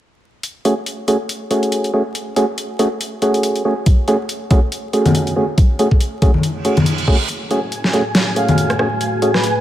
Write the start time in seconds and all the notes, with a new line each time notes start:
0.43 closed hi-hat
0.65 A3 C#4 F#4 G#4, closed hi-hat
0.86 closed hi-hat
1.08 A3 C#4 F#4 G#4, closed hi-hat
1.29 closed hi-hat
1.51 A3 C#4 F#4 G#4, closed hi-hat
1.63 closed hi-hat
1.72 closed hi-hat
1.84 closed hi-hat
1.94 A3 C#4 F#4 G#4
2.15 closed hi-hat
2.36 A3 C#4 F#4 G#4, closed hi-hat
2.58 closed hi-hat
2.79 A3 C#4 F#4 G#4, closed hi-hat
3.01 closed hi-hat
3.22 A3 C#4 F#4 G#4, closed hi-hat
3.34 closed hi-hat
3.43 closed hi-hat
3.56 closed hi-hat
3.65 A3 C#4 F#4 G#4
3.86 kick, closed hi-hat
4.08 A3 C#4 F#4 G#4, closed hi-hat
4.29 closed hi-hat
4.51 A3 C#4 F#4 G#4, kick, closed hi-hat
4.72 closed hi-hat
4.93 A3 C#4 F#4 G#4, closed hi-hat
5.06 closed hi-hat, high conga
5.15 closed hi-hat
5.27 closed hi-hat
5.36 A3 C#4 F#4 G#4
5.58 kick, closed hi-hat
5.79 A3 C#4 F#4 G#4, closed hi-hat
5.91 kick
6.00 closed hi-hat
6.22 A3 C#4 F#4 G#4, kick, closed hi-hat
6.34 high conga
6.43 closed hi-hat, reverse cymbal
6.65 A3 C#4 F#4 G#4, closed hi-hat
6.77 closed hi-hat, high conga
6.86 closed hi-hat
6.98 closed hi-hat
7.08 A3 C#4 F#4 G#4, kick
7.29 F#1 A3 F#4 G#4 G#5, closed hi-hat
7.51 A3 C#4 F#4 G#4, closed hi-hat
7.72 closed hi-hat
7.84 snare
7.93 A3 C#4 F#4 G#4, closed hi-hat
8.15 F#1, snare, closed hi-hat
8.36 A3 C#4 F#4 G#4 F5, closed hi-hat
8.48 closed hi-hat, high conga
8.58 closed hi-hat
8.70 cross-stick, closed hi-hat
8.79 A3 C#4 F#4 G#4, cross-stick
9.01 F#1, closed hi-hat
9.22 A3 C#4 F#4 G#4, closed hi-hat
9.34 B4, cross-stick, snare
9.43 closed hi-hat